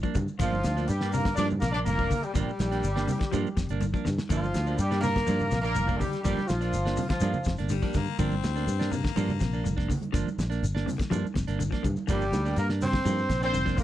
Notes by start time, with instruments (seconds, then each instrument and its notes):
0.03 clean electric guitar F3 A#3 D4, kick, shekere
0.15 fingered electric bass G2, clean electric guitar D3, kick, closed hi-hat, high conga, low conga, shekere
0.28 shekere
0.39 fingered electric bass G1, clean electric guitar D3 F3 A#3 D4, horn section F3 F4, tenor saxophone F3, kick, closed hi-hat, shekere
0.52 high conga, shekere
0.63 fingered electric bass D2, snare, closed hi-hat, high conga, shekere
0.77 clean electric guitar A#3 D4, snare, shekere
0.87 fingered electric bass G2, horn section G3 G4, tenor saxophone G3, closed hi-hat, shekere
1.01 clean electric guitar A#3 D4, snare, shekere
1.12 clean electric guitar C3, horn section A#3 A#4, tenor saxophone A#3, open hi-hat, high conga, low conga, shekere
1.25 clean electric guitar D3, kick, snare, shekere
1.35 fingered electric bass G2, clean electric guitar F3, horn section D4 D5, tenor saxophone D4, snare, closed hi-hat, shekere
1.39 clean electric guitar A#3 D4, high conga
1.50 high conga, low conga, shekere
1.60 fingered electric bass A#1, clean electric guitar C3, horn section A#3 A#4, tenor saxophone A#3, kick, snare, closed hi-hat, shekere
1.72 clean electric guitar A#3 D4, horn section D4 D5, tenor saxophone D4, shekere
1.86 fingered electric bass F1, clean electric guitar D3, horn section A#3 A#4, tenor saxophone A#3, closed hi-hat, high conga, shekere
1.98 clean electric guitar F3 A#3 D4, kick, shekere
2.10 clean electric guitar D3, kick, open hi-hat, low conga, shekere
2.23 horn section G3 G4, tenor saxophone G3, closed hi-hat, shekere
2.34 fingered electric bass G1, clean electric guitar A#2 F3 A#3 D4, horn section G3 G4, tenor saxophone G3, kick, snare, closed hi-hat, shekere
2.49 shekere
2.59 fingered electric bass A#1, snare, closed hi-hat, high conga, shekere
2.72 clean electric guitar A#3 D4, snare, closed hi-hat, shekere
2.84 fingered electric bass G1, closed hi-hat, shekere
2.96 clean electric guitar A#3 D4, snare, shekere
3.07 clean electric guitar C3, open hi-hat, high conga, low conga, shekere
3.19 clean electric guitar D3, kick, snare, closed hi-hat, shekere
3.31 fingered electric bass G2, clean electric guitar F3 A#3 D4, snare, closed hi-hat, high conga, shekere
3.45 high conga, shekere
3.57 fingered electric bass F1, clean electric guitar C3, kick, snare, closed hi-hat, shekere
3.69 fingered electric bass G1, clean electric guitar A#3 D4, closed hi-hat, shekere
3.80 clean electric guitar D3, closed hi-hat, high conga, shekere
3.94 clean electric guitar F3 A#3 D4, kick, shekere
4.05 fingered electric bass G2, clean electric guitar D3, snare, low conga, shekere
4.18 snare, high conga, shekere
4.29 fingered electric bass G1, clean electric guitar D3 F3 A#3 D4, horn section F3 F4, tenor saxophone F3, kick, closed hi-hat, shekere
4.42 high conga, shekere
4.54 fingered electric bass D2, snare, closed hi-hat, high conga, shekere
4.67 clean electric guitar A#3 D4, shekere
4.78 fingered electric bass G2, tenor saxophone G3, horn section G3 G4, closed hi-hat, shekere
4.91 clean electric guitar A#3 D4, snare, shekere
5.01 clean electric guitar C3, tenor saxophone A#3, horn section A#3 A#4, open hi-hat, high conga, low conga, shekere
5.14 clean electric guitar D3, kick, snare, shekere
5.27 fingered electric bass G2, clean electric guitar F3 A#3 D4, snare, closed hi-hat, high conga, shekere
5.40 high conga, low conga, shekere
5.51 fingered electric bass A#1, clean electric guitar C3, kick, snare, closed hi-hat, shekere
5.61 tenor saxophone A#3, horn section A#3 A#4, clean electric guitar A#3 D4, shekere
5.66 snare
5.75 fingered electric bass F1, clean electric guitar D3, closed hi-hat, high conga, shekere
5.87 clean electric guitar F3 A#3 D4, kick, shekere
5.98 clean electric guitar D3, tenor saxophone G3, horn section G3 G4, kick, open hi-hat, high conga, low conga, shekere
6.12 snare, closed hi-hat, shekere
6.23 fingered electric bass G1, clean electric guitar D3 F3 A#3 D4, horn section G3 G4, tenor saxophone G3, kick, closed hi-hat, shekere
6.37 snare, high conga, shekere
6.47 fingered electric bass A#1, tenor saxophone F3, horn section F3 F4, snare, closed hi-hat, high conga, shekere
6.61 clean electric guitar A#3 D4, snare, closed hi-hat, shekere
6.73 fingered electric bass G1, closed hi-hat, shekere
6.85 clean electric guitar A#3 D4, snare, shekere
6.97 clean electric guitar C3, open hi-hat, high conga, low conga, shekere
7.09 clean electric guitar D3, horn section F3 F4, tenor saxophone F3, kick, snare, closed hi-hat, shekere
7.20 fingered electric bass G2, clean electric guitar F3 A#3 D4, muted clean electric guitar stroke, closed hi-hat, high conga, shekere
7.33 low conga, shekere
7.44 fingered electric bass F1, clean electric guitar C3, kick, snare, closed hi-hat, shekere
7.57 fingered electric bass G1, clean electric guitar A#3 D4, snare, closed hi-hat, shekere
7.69 clean electric guitar D3, baritone saxophone G3, closed hi-hat, high conga, shekere
7.82 clean electric guitar F3 A#3 D4, kick, snare, shekere
7.94 fingered electric bass G2, clean electric guitar D3, baritone saxophone A#3, kick, snare, closed hi-hat, high conga, low conga, shekere
8.06 shekere
8.19 fingered electric bass G1, clean electric guitar D3 F3 A#3 D4, baritone saxophone C4, kick, closed hi-hat, shekere
8.31 high conga, shekere
8.43 fingered electric bass D2, snare, closed hi-hat, high conga, shekere
8.56 clean electric guitar A#3 D4, snare, shekere
8.67 fingered electric bass G2, closed hi-hat, shekere
8.79 clean electric guitar A#3 D4, snare, shekere
8.91 clean electric guitar C3, baritone saxophone A#3, open hi-hat, high conga, low conga, shekere
9.04 clean electric guitar D3, kick, snare, shekere
9.16 fingered electric bass G2, clean electric guitar F3 A#3 D4, closed hi-hat, high conga, shekere
9.29 high conga, low conga, shekere
9.40 fingered electric bass A#1, clean electric guitar C3, kick, snare, closed hi-hat, shekere
9.53 clean electric guitar A#3 D4, shekere
9.64 fingered electric bass F1, clean electric guitar D3, closed hi-hat, high conga, shekere
9.77 clean electric guitar A#3 D4, kick, snare, shekere
9.88 clean electric guitar D3, kick, open hi-hat, low conga, shekere
10.02 closed hi-hat, high conga, shekere
10.12 fingered electric bass G1, clean electric guitar D3 F3 A#3 D4, kick, snare, closed hi-hat, shekere
10.27 high conga, shekere
10.38 fingered electric bass A#1, snare, closed hi-hat, high conga, shekere
10.50 clean electric guitar A#3 D4, snare, closed hi-hat, shekere
10.63 fingered electric bass G1, closed hi-hat, shekere
10.75 clean electric guitar A#3 D4, snare, shekere
10.86 clean electric guitar C3, open hi-hat, high conga, low conga, shekere
10.98 clean electric guitar D3, kick, snare, closed hi-hat, shekere
11.10 fingered electric bass G2, clean electric guitar F3 A#3 D4, closed hi-hat, high conga, shekere
11.24 high conga, shekere
11.34 fingered electric bass F1, clean electric guitar C3, kick, snare, closed hi-hat, shekere
11.47 fingered electric bass G1, clean electric guitar A#3 D4, snare, closed hi-hat, shekere
11.59 clean electric guitar D3, closed hi-hat, high conga, shekere
11.71 clean electric guitar F3 A#3 D4, kick, snare, shekere
11.83 fingered electric bass G2, clean electric guitar D3, kick, closed hi-hat, high conga, low conga, shekere
11.96 high conga, shekere
12.07 fingered electric bass G1, clean electric guitar D3 F3 A#3 D4, tenor saxophone G3, horn section G3 G4, kick, closed hi-hat, shekere
12.21 shekere
12.32 fingered electric bass D2, snare, closed hi-hat, high conga, shekere
12.45 clean electric guitar A#3 D4, snare, shekere
12.56 fingered electric bass G2, horn section A#3 A#4, tenor saxophone A#3, closed hi-hat, shekere
12.69 clean electric guitar A#3 D4, snare, shekere
12.81 tenor saxophone C4, horn section C4 C5, open hi-hat, high conga, low conga, shekere
12.93 clean electric guitar D3, kick, snare, shekere
13.05 fingered electric bass G2, clean electric guitar F3 A#3, muted clean electric guitar stroke, closed hi-hat, high conga, shekere
13.18 shekere
13.29 fingered electric bass A#1, clean electric guitar C3, kick, snare, closed hi-hat, shekere
13.42 clean electric guitar A#3 D4, tenor saxophone C4, horn section C4 C5, snare, shekere
13.53 fingered electric bass F1, clean electric guitar D3, closed hi-hat, high conga, shekere
13.65 clean electric guitar F3 A#3 D4, kick, snare, shekere
13.77 clean electric guitar D3, tenor saxophone A#3, horn section A#3 A#4, kick, open hi-hat, high conga, low conga, shekere